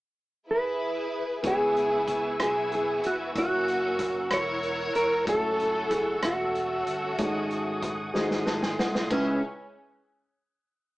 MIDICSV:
0, 0, Header, 1, 7, 480
1, 0, Start_track
1, 0, Key_signature, 4, "minor"
1, 0, Tempo, 638978
1, 1079, Time_signature, 6, 3, 24, 8
1, 8247, End_track
2, 0, Start_track
2, 0, Title_t, "Tonewheel organ"
2, 0, Program_c, 0, 16
2, 1069, Note_on_c, 0, 71, 47
2, 1071, Note_on_c, 0, 88, 56
2, 1072, Note_on_c, 0, 85, 44
2, 1075, Note_on_c, 0, 80, 43
2, 2499, Note_off_c, 0, 71, 0
2, 2502, Note_off_c, 0, 80, 0
2, 2516, Note_on_c, 0, 78, 45
2, 2522, Note_on_c, 0, 70, 50
2, 3942, Note_off_c, 0, 78, 0
2, 3945, Note_off_c, 0, 70, 0
2, 3955, Note_on_c, 0, 69, 53
2, 3957, Note_on_c, 0, 78, 48
2, 5363, Note_off_c, 0, 85, 0
2, 5363, Note_off_c, 0, 88, 0
2, 5381, Note_off_c, 0, 69, 0
2, 5397, Note_on_c, 0, 68, 48
2, 5398, Note_on_c, 0, 87, 57
2, 5402, Note_on_c, 0, 85, 46
2, 6112, Note_off_c, 0, 85, 0
2, 6134, Note_on_c, 0, 84, 45
2, 6809, Note_off_c, 0, 78, 0
2, 6824, Note_off_c, 0, 68, 0
2, 6824, Note_off_c, 0, 87, 0
2, 6833, Note_on_c, 0, 61, 50
2, 6835, Note_on_c, 0, 71, 46
2, 6836, Note_on_c, 0, 76, 57
2, 6838, Note_on_c, 0, 68, 45
2, 6839, Note_off_c, 0, 84, 0
2, 7059, Note_off_c, 0, 61, 0
2, 7060, Note_off_c, 0, 71, 0
2, 7061, Note_off_c, 0, 76, 0
2, 7062, Note_off_c, 0, 68, 0
2, 8247, End_track
3, 0, Start_track
3, 0, Title_t, "Clean electric guitar"
3, 0, Program_c, 1, 27
3, 382, Note_on_c, 1, 71, 69
3, 1061, Note_off_c, 1, 71, 0
3, 1106, Note_on_c, 1, 68, 66
3, 1813, Note_off_c, 1, 68, 0
3, 1822, Note_on_c, 1, 68, 70
3, 2057, Note_off_c, 1, 68, 0
3, 2066, Note_on_c, 1, 68, 61
3, 2299, Note_off_c, 1, 68, 0
3, 2303, Note_on_c, 1, 66, 64
3, 2364, Note_off_c, 1, 66, 0
3, 2542, Note_on_c, 1, 66, 71
3, 3257, Note_on_c, 1, 73, 87
3, 3271, Note_off_c, 1, 66, 0
3, 3722, Note_off_c, 1, 73, 0
3, 3725, Note_on_c, 1, 70, 75
3, 3945, Note_off_c, 1, 70, 0
3, 3973, Note_on_c, 1, 69, 76
3, 4432, Note_off_c, 1, 69, 0
3, 4432, Note_on_c, 1, 68, 76
3, 4655, Note_off_c, 1, 68, 0
3, 4693, Note_on_c, 1, 66, 63
3, 6335, Note_off_c, 1, 66, 0
3, 6855, Note_on_c, 1, 61, 66
3, 7071, Note_off_c, 1, 61, 0
3, 8247, End_track
4, 0, Start_track
4, 0, Title_t, "Grand piano"
4, 0, Program_c, 2, 0
4, 1072, Note_on_c, 2, 59, 48
4, 1080, Note_on_c, 2, 64, 41
4, 1085, Note_on_c, 2, 49, 43
4, 1092, Note_on_c, 2, 68, 42
4, 1100, Note_on_c, 2, 73, 52
4, 1211, Control_c, 2, 64, 127
4, 1772, Note_off_c, 2, 49, 0
4, 2486, Note_off_c, 2, 59, 0
4, 2490, Note_off_c, 2, 64, 0
4, 2497, Note_off_c, 2, 68, 0
4, 2501, Note_off_c, 2, 73, 0
4, 2511, Note_on_c, 2, 58, 47
4, 2521, Note_on_c, 2, 64, 46
4, 2530, Control_c, 2, 64, 0
4, 2531, Note_on_c, 2, 66, 45
4, 2539, Note_on_c, 2, 73, 52
4, 2664, Control_c, 2, 64, 127
4, 3925, Note_off_c, 2, 58, 0
4, 3930, Note_off_c, 2, 64, 0
4, 3935, Note_off_c, 2, 66, 0
4, 3939, Note_off_c, 2, 73, 0
4, 3945, Note_on_c, 2, 56, 38
4, 3955, Note_on_c, 2, 64, 45
4, 3967, Note_on_c, 2, 66, 46
4, 3968, Control_c, 2, 64, 0
4, 3972, Note_on_c, 2, 73, 50
4, 3993, Note_on_c, 2, 57, 49
4, 4000, Note_off_c, 2, 56, 0
4, 4079, Control_c, 2, 64, 127
4, 5367, Note_off_c, 2, 64, 0
4, 5373, Note_off_c, 2, 66, 0
4, 5376, Note_off_c, 2, 73, 0
4, 5386, Note_off_c, 2, 57, 0
4, 5395, Note_on_c, 2, 68, 57
4, 5399, Note_on_c, 2, 63, 55
4, 5402, Note_on_c, 2, 44, 55
4, 5405, Note_on_c, 2, 66, 51
4, 5407, Control_c, 2, 64, 0
4, 5409, Note_on_c, 2, 73, 61
4, 5527, Control_c, 2, 64, 127
4, 6089, Note_off_c, 2, 44, 0
4, 6101, Note_off_c, 2, 68, 0
4, 6106, Note_off_c, 2, 63, 0
4, 6112, Note_off_c, 2, 66, 0
4, 6112, Note_on_c, 2, 68, 62
4, 6117, Note_on_c, 2, 63, 60
4, 6120, Note_on_c, 2, 44, 58
4, 6123, Note_off_c, 2, 73, 0
4, 6123, Note_on_c, 2, 66, 59
4, 6125, Control_c, 2, 64, 0
4, 6126, Note_on_c, 2, 72, 63
4, 6235, Control_c, 2, 64, 127
4, 6361, Note_on_c, 2, 81, 52
4, 6471, Note_off_c, 2, 81, 0
4, 6482, Note_on_c, 2, 80, 52
4, 6592, Note_off_c, 2, 80, 0
4, 6603, Note_on_c, 2, 78, 52
4, 6809, Note_off_c, 2, 44, 0
4, 6824, Note_off_c, 2, 78, 0
4, 6835, Note_off_c, 2, 68, 0
4, 6838, Note_off_c, 2, 63, 0
4, 6841, Note_off_c, 2, 66, 0
4, 6843, Note_off_c, 2, 72, 0
4, 6843, Note_on_c, 2, 37, 56
4, 6843, Note_on_c, 2, 71, 65
4, 6844, Note_on_c, 2, 56, 59
4, 6844, Note_on_c, 2, 64, 53
4, 6845, Note_on_c, 2, 61, 54
4, 6849, Control_c, 2, 64, 0
4, 7065, Note_off_c, 2, 37, 0
4, 7065, Note_off_c, 2, 56, 0
4, 7065, Note_off_c, 2, 61, 0
4, 7065, Note_off_c, 2, 64, 0
4, 7065, Note_off_c, 2, 71, 0
4, 8247, End_track
5, 0, Start_track
5, 0, Title_t, "String section"
5, 0, Program_c, 3, 48
5, 370, Note_on_c, 3, 71, 75
5, 375, Note_on_c, 3, 68, 57
5, 376, Note_on_c, 3, 64, 54
5, 1055, Note_off_c, 3, 71, 0
5, 1057, Note_off_c, 3, 68, 0
5, 1058, Note_off_c, 3, 64, 0
5, 1084, Note_on_c, 3, 68, 75
5, 1095, Note_on_c, 3, 64, 52
5, 1097, Note_on_c, 3, 59, 51
5, 1777, Note_off_c, 3, 64, 0
5, 1778, Note_off_c, 3, 59, 0
5, 1795, Note_off_c, 3, 68, 0
5, 1804, Note_on_c, 3, 68, 75
5, 1815, Note_on_c, 3, 59, 51
5, 1818, Note_on_c, 3, 64, 53
5, 2251, Note_off_c, 3, 68, 0
5, 2276, Note_on_c, 3, 66, 66
5, 2497, Note_off_c, 3, 59, 0
5, 2498, Note_off_c, 3, 64, 0
5, 2507, Note_off_c, 3, 66, 0
5, 2516, Note_on_c, 3, 66, 78
5, 2533, Note_on_c, 3, 61, 55
5, 2537, Note_on_c, 3, 58, 52
5, 3207, Note_off_c, 3, 66, 0
5, 3215, Note_off_c, 3, 61, 0
5, 3217, Note_off_c, 3, 58, 0
5, 3240, Note_on_c, 3, 73, 93
5, 3257, Note_on_c, 3, 70, 65
5, 3258, Note_on_c, 3, 64, 62
5, 3937, Note_off_c, 3, 64, 0
5, 3937, Note_off_c, 3, 70, 0
5, 3958, Note_off_c, 3, 73, 0
5, 3959, Note_on_c, 3, 69, 83
5, 3973, Note_on_c, 3, 64, 60
5, 3978, Note_on_c, 3, 61, 60
5, 4655, Note_off_c, 3, 64, 0
5, 4657, Note_off_c, 3, 61, 0
5, 4678, Note_off_c, 3, 69, 0
5, 4680, Note_on_c, 3, 66, 66
5, 4696, Note_on_c, 3, 57, 52
5, 4698, Note_on_c, 3, 61, 52
5, 6337, Note_off_c, 3, 57, 0
5, 6338, Note_off_c, 3, 61, 0
5, 6359, Note_off_c, 3, 66, 0
5, 6850, Note_on_c, 3, 61, 68
5, 7068, Note_off_c, 3, 61, 0
5, 8247, End_track
6, 0, Start_track
6, 0, Title_t, "Fingered electric bass"
6, 0, Program_c, 4, 33
6, 1083, Note_on_c, 4, 37, 73
6, 1771, Note_off_c, 4, 37, 0
6, 1800, Note_on_c, 4, 35, 66
6, 2284, Note_off_c, 4, 35, 0
6, 2284, Note_on_c, 4, 29, 66
6, 2502, Note_off_c, 4, 29, 0
6, 2521, Note_on_c, 4, 30, 77
6, 3209, Note_off_c, 4, 30, 0
6, 3245, Note_on_c, 4, 28, 73
6, 3691, Note_off_c, 4, 28, 0
6, 3720, Note_on_c, 4, 29, 68
6, 3939, Note_off_c, 4, 29, 0
6, 3960, Note_on_c, 4, 30, 79
6, 4648, Note_off_c, 4, 30, 0
6, 4678, Note_on_c, 4, 28, 70
6, 5127, Note_off_c, 4, 28, 0
6, 5158, Note_on_c, 4, 31, 62
6, 5378, Note_off_c, 4, 31, 0
6, 5397, Note_on_c, 4, 32, 80
6, 6087, Note_off_c, 4, 32, 0
6, 6122, Note_on_c, 4, 32, 78
6, 6570, Note_off_c, 4, 32, 0
6, 6600, Note_on_c, 4, 36, 70
6, 6820, Note_off_c, 4, 36, 0
6, 6839, Note_on_c, 4, 37, 76
6, 7062, Note_off_c, 4, 37, 0
6, 8247, End_track
7, 0, Start_track
7, 0, Title_t, "Drums"
7, 1078, Note_on_c, 9, 42, 68
7, 1080, Note_on_c, 9, 36, 84
7, 1154, Note_off_c, 9, 42, 0
7, 1155, Note_off_c, 9, 36, 0
7, 1326, Note_on_c, 9, 42, 38
7, 1401, Note_off_c, 9, 42, 0
7, 1558, Note_on_c, 9, 42, 61
7, 1559, Note_on_c, 9, 36, 63
7, 1633, Note_off_c, 9, 42, 0
7, 1634, Note_off_c, 9, 36, 0
7, 1799, Note_on_c, 9, 42, 62
7, 1801, Note_on_c, 9, 37, 86
7, 1874, Note_off_c, 9, 42, 0
7, 1876, Note_off_c, 9, 37, 0
7, 2040, Note_on_c, 9, 42, 39
7, 2115, Note_off_c, 9, 42, 0
7, 2280, Note_on_c, 9, 42, 50
7, 2355, Note_off_c, 9, 42, 0
7, 2520, Note_on_c, 9, 42, 68
7, 2521, Note_on_c, 9, 36, 83
7, 2595, Note_off_c, 9, 42, 0
7, 2596, Note_off_c, 9, 36, 0
7, 2763, Note_on_c, 9, 42, 38
7, 2838, Note_off_c, 9, 42, 0
7, 2996, Note_on_c, 9, 42, 60
7, 2998, Note_on_c, 9, 36, 68
7, 3004, Note_on_c, 9, 37, 26
7, 3071, Note_off_c, 9, 42, 0
7, 3073, Note_off_c, 9, 36, 0
7, 3080, Note_off_c, 9, 37, 0
7, 3233, Note_on_c, 9, 42, 65
7, 3235, Note_on_c, 9, 37, 93
7, 3309, Note_off_c, 9, 42, 0
7, 3310, Note_off_c, 9, 37, 0
7, 3477, Note_on_c, 9, 42, 38
7, 3552, Note_off_c, 9, 42, 0
7, 3719, Note_on_c, 9, 42, 53
7, 3794, Note_off_c, 9, 42, 0
7, 3959, Note_on_c, 9, 36, 92
7, 3960, Note_on_c, 9, 42, 73
7, 4034, Note_off_c, 9, 36, 0
7, 4035, Note_off_c, 9, 42, 0
7, 4203, Note_on_c, 9, 42, 41
7, 4278, Note_off_c, 9, 42, 0
7, 4437, Note_on_c, 9, 42, 63
7, 4438, Note_on_c, 9, 36, 68
7, 4512, Note_off_c, 9, 42, 0
7, 4513, Note_off_c, 9, 36, 0
7, 4675, Note_on_c, 9, 42, 64
7, 4677, Note_on_c, 9, 37, 93
7, 4750, Note_off_c, 9, 42, 0
7, 4752, Note_off_c, 9, 37, 0
7, 4921, Note_on_c, 9, 42, 39
7, 4996, Note_off_c, 9, 42, 0
7, 5158, Note_on_c, 9, 42, 51
7, 5234, Note_off_c, 9, 42, 0
7, 5395, Note_on_c, 9, 42, 67
7, 5399, Note_on_c, 9, 36, 85
7, 5471, Note_off_c, 9, 42, 0
7, 5474, Note_off_c, 9, 36, 0
7, 5638, Note_on_c, 9, 42, 39
7, 5713, Note_off_c, 9, 42, 0
7, 5877, Note_on_c, 9, 42, 61
7, 5878, Note_on_c, 9, 36, 73
7, 5886, Note_on_c, 9, 37, 26
7, 5953, Note_off_c, 9, 36, 0
7, 5953, Note_off_c, 9, 42, 0
7, 5961, Note_off_c, 9, 37, 0
7, 6121, Note_on_c, 9, 38, 45
7, 6196, Note_off_c, 9, 38, 0
7, 6241, Note_on_c, 9, 38, 41
7, 6316, Note_off_c, 9, 38, 0
7, 6359, Note_on_c, 9, 38, 58
7, 6434, Note_off_c, 9, 38, 0
7, 6480, Note_on_c, 9, 38, 53
7, 6555, Note_off_c, 9, 38, 0
7, 6605, Note_on_c, 9, 38, 69
7, 6680, Note_off_c, 9, 38, 0
7, 6723, Note_on_c, 9, 38, 65
7, 6799, Note_off_c, 9, 38, 0
7, 6839, Note_on_c, 9, 49, 63
7, 6840, Note_on_c, 9, 36, 83
7, 6914, Note_off_c, 9, 49, 0
7, 6915, Note_off_c, 9, 36, 0
7, 8247, End_track
0, 0, End_of_file